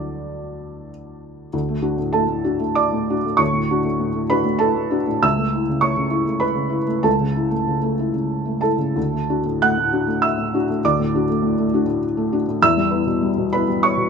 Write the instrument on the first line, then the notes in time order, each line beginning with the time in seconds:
felt piano
Already playing: D2 F#3 D4 E4 D5
1.53 D2
1.68 A3
1.82 D4 F#4
1.97 A2
2.13 A3 A4 A5
2.28 A2
2.44 D4 F#4
2.59 A3
2.75 D5 D6
2.92 A2
3.10 D4 F#4
3.24 A3
3.37 D2 C#5 C#6
3.53 A2
3.71 D4 F#4
3.84 A3
3.99 A2
4.14 A3
4.30 D4 F#4 B4 B5
4.44 A2
4.59 A4 A5
4.76 A3
4.91 D4 F#4
5.07 A2
5.23 C#2 E5 E6
5.37 A3
5.55 E4
5.69 C#3
5.81 A3 C#5 C#6
5.97 C#3
6.10 E4
6.25 A3
6.40 B4 B5
6.55 C#3
6.70 E4
6.87 A3
7.03 C#2 A4 A5
7.20 C#3
7.36 E4
7.50 A3
7.67 C#3
7.83 A3
7.99 E4
8.13 C#3
8.45 A3
8.61 E4 A4 A5
8.78 C#3
8.96 D2
9.13 A3
9.30 D4 F#4
9.45 A2
9.62 A3 F#5 F#6
9.78 A2
9.92 D4 F#4
10.07 A3
10.22 E5 E6
10.38 A2
10.54 D4 F#4
10.69 A3
10.85 D2 D5 D6
11.00 A2
11.14 D4 F#4
11.29 A3
11.42 A2
11.58 A3
11.74 D4 F#4
11.86 A2
12.17 A3
12.32 D4 F#4
12.48 A2
12.62 E2 E5 E6
12.77 G3
12.91 B3 E4
13.06 B2
13.22 G3
13.38 B2
13.53 B3 E4 B4 B5
13.68 G3
13.83 C#5 C#6
13.97 B2